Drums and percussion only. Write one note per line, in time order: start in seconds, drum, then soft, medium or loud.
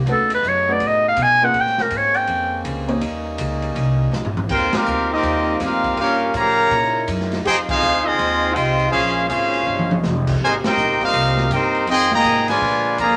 0.06 kick soft
0.06 ride medium
0.30 ride medium
0.43 kick soft
0.43 hi-hat pedal medium
0.80 kick soft
0.80 ride medium
1.17 kick soft
1.17 hi-hat pedal medium
1.17 ride medium
1.54 kick soft
1.54 ride medium
1.66 snare soft
1.78 snare medium
1.90 kick soft
1.90 hi-hat pedal soft
1.90 ride medium
2.14 ride medium
2.27 kick soft
2.27 ride medium
2.65 kick soft
2.65 hi-hat pedal medium
2.65 ride medium
2.88 ride medium
3.01 kick soft
3.01 ride medium
3.38 kick soft
3.38 hi-hat pedal medium
3.38 ride medium
3.62 ride medium
3.75 kick soft
3.75 ride medium
4.13 snare medium
4.13 hi-hat pedal medium
4.25 floor tom medium
4.37 floor tom medium
4.49 kick medium
4.49 crash medium
4.73 snare loud
4.73 ride medium
4.86 hi-hat pedal medium
5.23 kick soft
5.23 ride medium
5.60 kick soft
5.60 snare soft
5.60 hi-hat pedal medium
5.60 ride medium
5.84 kick medium
5.84 ride medium
5.97 ride medium
6.34 kick soft
6.34 hi-hat pedal medium
6.34 ride medium
6.71 kick soft
6.71 ride medium
7.08 kick soft
7.08 hi-hat pedal medium
7.08 ride medium
7.20 snare soft
7.32 snare soft
7.32 ride medium
7.45 kick soft
7.45 ride medium
7.69 kick loud
7.69 crash loud
7.82 hi-hat pedal medium
8.19 kick soft
8.19 ride medium
8.56 kick soft
8.56 hi-hat pedal medium
8.56 ride medium
8.79 ride medium
8.93 kick soft
8.93 ride medium
9.29 kick soft
9.29 hi-hat pedal medium
9.29 ride medium
9.54 ride medium
9.79 mid tom medium
9.91 mid tom loud
10.03 snare medium
10.03 hi-hat pedal medium
10.27 kick medium
10.27 crash medium
10.40 kick soft
10.64 snare loud
10.64 ride medium
10.77 hi-hat pedal medium
11.01 ride soft
11.14 kick soft
11.14 ride medium
11.37 snare soft
11.51 kick soft
11.51 hi-hat pedal medium
11.51 ride medium
11.75 ride medium
11.87 kick soft
11.87 ride medium
12.11 snare medium
12.24 kick soft
12.24 hi-hat pedal medium
12.24 ride medium
12.37 snare soft
12.48 snare medium
12.48 ride medium
12.61 kick soft
12.98 kick soft
12.98 hi-hat pedal medium
12.98 ride medium